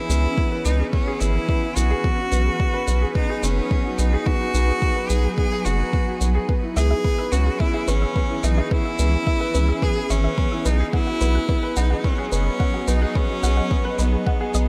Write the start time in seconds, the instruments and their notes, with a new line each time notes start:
Already playing: ambient pad E3 C#4 B4, grand piano B3 E4 G#4 B4, cello E4
0.09 analog synth bass C#2, grand piano B3, shaker
0.24 grand piano G#4
0.38 grand piano B3, kick
0.52 grand piano B4
0.65 analog synth bass C#2, grand piano B3, cello D#4, shaker
0.80 grand piano G#4
0.93 grand piano B3, cello C#4, kick
1.07 grand piano G#4
1.20 analog synth bass G#1, grand piano B3, cello E4, shaker
1.35 grand piano B4
1.49 grand piano B3, kick
1.63 grand piano E4
1.76 analog synth bass B1, grand piano B3, cello F#4, shaker
1.90 grand piano G#4
2.04 ambient pad F#3, grand piano B3, kick
2.18 grand piano F#4
2.32 analog synth bass B1, grand piano B3, ambient pad D#4, shaker
2.46 grand piano G#4
2.60 grand piano B3, kick
2.74 grand piano B4
2.88 analog synth bass B1, grand piano B3, shaker
3.02 grand piano G#4
3.15 grand piano B3, cello D#4, kick
3.29 grand piano G#4
3.43 analog synth bass F#1, grand piano B3, cello C#4, shaker
3.57 grand piano B4
3.71 grand piano B3, kick
3.85 grand piano F#4
3.98 analog synth bass B1, grand piano B3, cello D#4, shaker
4.13 grand piano G#4
4.26 grand piano B3, cello F#4, kick
4.40 grand piano F#4
4.54 analog synth bass B1, grand piano B3, shaker
4.68 grand piano G#4
4.82 grand piano B3, kick
4.96 grand piano B4
5.09 analog synth bass B1, grand piano B3, cello G#4, shaker
5.24 grand piano G#4
5.37 grand piano B3, cello G#4, kick
5.52 grand piano G#4
5.65 analog synth bass F#1, grand piano B3, cello F#4, shaker
5.79 grand piano B4
5.93 grand piano B3, kick
6.07 grand piano F#4
6.21 analog synth bass B1, grand piano B3, shaker
6.35 grand piano G#4
6.49 ambient pad E3, grand piano B3, synth arpeggio sound B4, kick
6.60 ambient pad C#4, grand piano E4
6.76 analog synth bass C#2, grand piano B3, cello G#4, synth arpeggio sound E5, shaker
6.84 ambient pad G#4
6.90 grand piano G#4, synth arpeggio sound E5
7.04 grand piano B3, synth arpeggio sound B4, kick
7.18 grand piano B4, synth arpeggio sound E6
7.32 analog synth bass C#2, grand piano C#4, cello F#4, synth arpeggio sound B4, shaker
7.46 grand piano G#4
7.60 grand piano B3, cello E4, synth arpeggio sound E5, kick
7.73 grand piano G#4, synth arpeggio sound E5
7.88 analog synth bass G#1, grand piano B3, cello C#4, synth arpeggio sound B4, shaker
8.02 grand piano B4, synth arpeggio sound E6
8.15 grand piano B3, synth arpeggio sound B4, kick
8.29 grand piano E4
8.43 analog synth bass B1, grand piano B3, cello D#4, synth arpeggio sound E5, shaker
8.57 grand piano G#4, synth arpeggio sound E5
8.71 grand piano B3, cello E4, synth arpeggio sound B4, kick
8.85 grand piano E4, synth arpeggio sound E6
8.99 analog synth bass C#2, grand piano B3, synth arpeggio sound B4, shaker
9.13 grand piano G#4
9.27 grand piano B3, synth arpeggio sound E5, kick
9.40 grand piano B4, synth arpeggio sound E5
9.54 analog synth bass C#2, grand piano C#4, synth arpeggio sound B4, shaker
9.68 grand piano G#4, synth arpeggio sound E6
9.82 grand piano B3, cello G#4, synth arpeggio sound B4, kick
9.96 grand piano G#4
10.10 analog synth bass G#1, grand piano B3, cello C#4, synth arpeggio sound E5, shaker
10.24 grand piano B4, synth arpeggio sound E5
10.38 grand piano B3, synth arpeggio sound B4, kick
10.51 grand piano E4, synth arpeggio sound E6
10.65 analog synth bass B1, grand piano B3, cello D#4, synth arpeggio sound B4, shaker
10.80 grand piano G#4
10.93 ambient pad F#3, grand piano B3, cello E4, synth arpeggio sound F#5, kick
11.05 ambient pad B3 D#5, grand piano F#4, synth arpeggio sound F#5
11.21 analog synth bass B1, grand piano B3, synth arpeggio sound B4, shaker
11.35 grand piano G#4, synth arpeggio sound F#6
11.49 grand piano B3, synth arpeggio sound B4, kick
11.63 grand piano B4
11.76 analog synth bass B1, grand piano D#4, cello D#4, synth arpeggio sound F#5, shaker
11.90 grand piano G#4, synth arpeggio sound F#5
12.04 grand piano B3, cello C#4, synth arpeggio sound B4, kick
12.18 grand piano G#4, synth arpeggio sound F#6
12.32 analog synth bass F#1, grand piano B3, cello C#4, synth arpeggio sound B4, shaker
12.46 grand piano B4
12.60 grand piano B3, synth arpeggio sound F#5, kick
12.74 grand piano F#4, synth arpeggio sound F#5
12.88 analog synth bass B1, grand piano B3, cello D#4, synth arpeggio sound B4, shaker
13.02 grand piano G#4, synth arpeggio sound F#6
13.15 grand piano B3, cello C#4, synth arpeggio sound B4, kick
13.29 grand piano F#4
13.43 analog synth bass B1, grand piano B3, synth arpeggio sound F#5, shaker
13.57 grand piano G#4, synth arpeggio sound F#5
13.71 grand piano B3, synth arpeggio sound B4, kick
13.85 grand piano B4, synth arpeggio sound F#6
13.98 analog synth bass B1, cello B3, grand piano D#4, synth arpeggio sound B4, shaker
14.12 grand piano G#4
14.26 grand piano B3, synth arpeggio sound F#5, kick
14.40 grand piano G#4, synth arpeggio sound F#5
14.54 analog synth bass B1, grand piano B3, synth arpeggio sound D#5, shaker